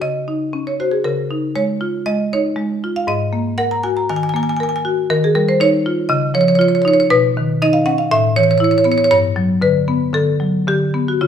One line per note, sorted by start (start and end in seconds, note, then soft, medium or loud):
0.00 1.01 C#3 soft
0.00 0.17 F#4 soft
0.00 0.63 D#5 medium
0.28 0.69 D#4 soft
0.53 0.94 C#4 medium
0.67 0.79 C#5 medium
0.80 1.05 F#4 soft
0.80 0.92 C5 medium
0.91 1.04 G#4 medium
1.04 2.03 C#3 medium
1.04 1.53 A#4 medium
1.31 1.71 D#4 soft
1.56 1.96 G#3 medium
1.56 2.04 C#5 medium
1.81 2.22 F4 medium
2.06 2.47 G#3 medium
2.06 2.30 D#5 medium
2.33 2.73 D#4 soft
2.33 2.93 C#5 medium
2.56 2.97 G#3 medium
2.84 3.08 F4 medium
2.96 3.08 F5 medium
3.07 4.05 G#2 medium
3.07 3.56 D#5 medium
3.33 3.73 A#3 medium
3.58 3.98 A#4 medium
3.58 3.70 F#5 medium
3.71 3.83 A#5 medium
3.83 4.23 F#4 medium
3.83 3.96 G#5 medium
3.97 4.08 A#5 medium
4.09 4.49 D#3 medium
4.09 4.16 G#5 medium
4.16 4.23 G#5 medium
4.23 4.29 G#5 medium
4.29 4.36 G#5 medium
4.34 4.74 A#3 medium
4.34 4.43 G#5 medium
4.43 4.49 G#5 medium
4.49 4.57 G#5 medium
4.57 5.00 A#4 medium
4.57 4.63 G#5 medium
4.63 4.69 G#5 medium
4.69 4.76 G#5 medium
4.76 4.82 G#5 medium
4.85 5.09 F#4 medium
5.10 6.07 D#3 medium
5.10 5.22 A#4 medium
5.24 5.35 G#4 medium
5.35 5.75 G3 medium
5.35 5.47 A#4 medium
5.49 5.60 C5 medium
5.60 6.00 D#4 medium
5.60 6.08 C#5 loud
5.86 6.10 F4 medium
6.09 7.07 C#3 medium
6.09 6.33 D#5 medium
6.34 6.74 F3 medium
6.34 6.41 C#5 loud
6.41 6.48 C#5 medium
6.48 6.55 C#5 medium
6.55 6.99 F4 medium
6.55 6.61 C#5 medium
6.61 6.68 C#5 medium
6.68 6.75 C#5 medium
6.75 6.82 C#5 medium
6.82 7.10 D#4 medium
6.82 6.88 C#5 medium
6.88 6.94 C#5 medium
6.94 7.00 C#5 medium
7.00 7.07 C#5 medium
7.10 8.08 B2 medium
7.10 7.59 B4 loud
7.37 7.77 D#3 medium
7.62 8.01 D#4 medium
7.62 7.74 D#5 loud
7.73 7.86 F5 medium
7.86 8.11 C#4 medium
7.86 7.98 F#5 medium
7.98 8.11 F5 medium
8.11 9.09 A2 medium
8.11 8.35 E5 loud
8.36 8.77 E3 medium
8.36 8.43 C#5 loud
8.43 8.51 C#5 medium
8.51 8.58 C#5 medium
8.58 9.01 E4 medium
8.58 8.64 C#5 medium
8.64 8.71 C#5 medium
8.71 8.78 C#5 medium
8.78 8.84 C#5 medium
8.84 9.11 B3 medium
8.84 8.92 C#5 medium
8.92 8.98 C#5 medium
8.98 9.04 C#5 medium
9.04 9.09 C#5 medium
9.11 10.10 G2 medium
9.11 9.59 C#5 loud
9.36 9.77 F#3 medium
9.62 10.03 D3 medium
9.62 10.12 B4 medium
9.88 10.30 B3 medium
10.13 10.56 D3 medium
10.13 10.65 A4 medium
10.40 10.83 F#3 medium
10.68 11.10 D3 medium
10.68 11.06 G4 medium
10.94 11.21 B3 medium
11.08 11.21 F#4 medium
11.21 11.27 C#3 medium
11.21 11.27 F4 medium